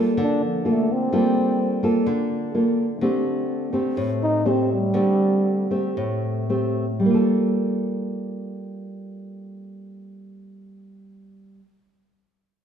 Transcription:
Already playing: nylon-string guitar G3 A#3 F4 A4
0.17 nylon-string guitar D3
0.23 trombone D4
0.46 trombone F3
0.65 trombone A3, nylon-string guitar A#3 F4 A4
0.92 trombone C4
1.13 nylon-string guitar G3 A#3 F4 A4
1.83 nylon-string guitar A#3 F4 A4
2.06 nylon-string guitar D3
2.54 nylon-string guitar A#3 F4 A4
3.01 nylon-string guitar D3 A3 C4 G4
3.73 nylon-string guitar A3 C4 G4
3.97 nylon-string guitar A2
4.23 trombone D#4
4.45 nylon-string guitar A3 C4 G4, trombone C4
4.73 trombone G3
4.94 nylon-string guitar D3 A3 C4 G4
5.71 nylon-string guitar A3 C4 G4
5.97 nylon-string guitar A2
6.49 nylon-string guitar A3 C4 G4
7.00 nylon-string guitar G3
7.06 nylon-string guitar A#3
7.10 nylon-string guitar F4
7.14 nylon-string guitar A4

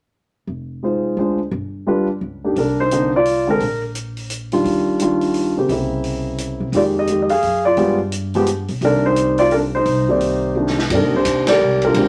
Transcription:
0.47 upright bass F1
0.83 grand piano G#3 D#4 F4 C5
1.17 upright bass D2, grand piano G#3 D4 F4 C5
1.51 upright bass G1
1.87 grand piano G3 D4 F4 B4
2.21 upright bass C#2
2.44 grand piano A#3 D4 D#4 G4
2.56 upright bass C2, grand piano D4 A#4, kick, open hi-hat
2.80 grand piano D#4 C5
2.91 grand piano D3 A#3 C4 D#4, closed hi-hat
3.16 grand piano F4 D5
3.25 open hi-hat
3.47 grand piano D3 G#3 C4 D4 A#4
3.60 upright bass A#1, kick, open hi-hat
3.95 closed hi-hat
4.17 open hi-hat
4.30 closed hi-hat
4.52 grand piano D#3 G3 D4 F4, open hi-hat
4.64 upright bass D#2, kick, open hi-hat
4.99 grand piano D#3 G3 D4 F4, closed hi-hat
5.21 open hi-hat
5.34 open hi-hat
5.57 grand piano C#3 A#3 C4 G4, muted upright bass stroke
5.69 upright bass C2, grand piano C#3 A#3 C4 E4, kick, open hi-hat
6.04 open hi-hat
6.38 closed hi-hat
6.60 upright bass C3
6.72 upright bass F2, grand piano D#3 G#3 A#3 G4, kick, open hi-hat
6.77 grand piano F4 D5
6.99 grand piano G4 D#5
7.07 grand piano D#3 G#3 A#3 G4, closed hi-hat
7.22 grand piano D#5
7.29 grand piano G#4 F5, open hi-hat
7.42 upright bass F#2, open hi-hat
7.65 grand piano F4 D5
7.77 upright bass G2, grand piano F3 G#3 B3 G4, kick, open hi-hat
8.12 closed hi-hat
8.34 grand piano F3 G#3 B3 G4, open hi-hat
8.46 closed hi-hat
8.68 upright bass B1, open hi-hat
8.81 upright bass C2, grand piano C3 D#3 A#3 D4 A#4 D5, kick, open hi-hat
9.06 grand piano D#4 C5
9.16 closed hi-hat
9.38 grand piano F4 D5, open hi-hat
9.51 grand piano D4 A#4, open hi-hat
9.75 grand piano D#4 C5
9.85 upright bass C2, kick, open hi-hat
10.09 grand piano C3 D#3 A#3 D5
10.21 open hi-hat
10.56 grand piano C3 D#3 A#3 D4
10.67 snare
10.78 snare
10.90 upright bass G2, grand piano C3 D#3 A#3 D5, kick, ride
10.95 grand piano D4 D#4 A#4
11.03 upright bass D#2
11.14 upright bass C2, grand piano D#4 G4 C5
11.25 upright bass D#2, kick, hi-hat pedal, ride
11.47 grand piano G4 A#4 D5, snare, ride
11.61 upright bass C2
11.82 grand piano A#4, ride
11.87 grand piano D4 F4
11.94 upright bass A#1, grand piano D3 G#3 C4 G4, kick, ride

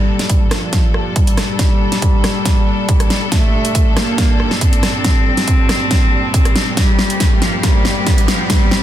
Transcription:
Already playing: string section G2 A#2 G3 D4 A4, cello G3, riser
0.19 snare, closed hi-hat
0.29 kick, closed hi-hat
0.51 cello F3, cross-stick, snare, closed hi-hat
0.73 kick, snare, closed hi-hat
0.94 cross-stick
1.16 cello G3, kick, closed hi-hat
1.27 closed hi-hat
1.38 cross-stick, snare, closed hi-hat
1.59 kick, snare, closed hi-hat
1.92 snare, closed hi-hat
2.02 kick, closed hi-hat
2.24 cross-stick, snare, closed hi-hat
2.45 kick, snare, closed hi-hat
2.89 kick, closed hi-hat
3.00 cross-stick, closed hi-hat
3.10 snare, closed hi-hat
3.32 cello A3, kick, snare, closed hi-hat
3.65 closed hi-hat
3.75 kick, closed hi-hat
3.97 cello A#3, cross-stick, snare, closed hi-hat
4.18 kick, snare, closed hi-hat
4.40 cross-stick
4.51 snare
4.61 cello C4, kick, closed hi-hat
4.73 closed hi-hat
4.83 cross-stick, snare, closed hi-hat
5.04 kick, snare, closed hi-hat
5.37 snare, closed hi-hat
5.48 kick, closed hi-hat
5.69 cross-stick, snare, closed hi-hat
5.91 kick, snare, closed hi-hat
6.34 kick, closed hi-hat
6.45 cross-stick, closed hi-hat
6.56 snare, closed hi-hat
6.77 cello G3, string section C4 G4, kick, snare, closed hi-hat
6.99 snare
7.10 closed hi-hat
7.20 kick, snare, closed hi-hat
7.42 cello F3, snare, closed hi-hat
7.63 cello G3, kick, snare, closed hi-hat
7.85 snare
8.07 kick, snare, closed hi-hat
8.18 closed hi-hat
8.28 cello F3, snare, closed hi-hat
8.50 cello G3, kick, snare, closed hi-hat
8.71 snare

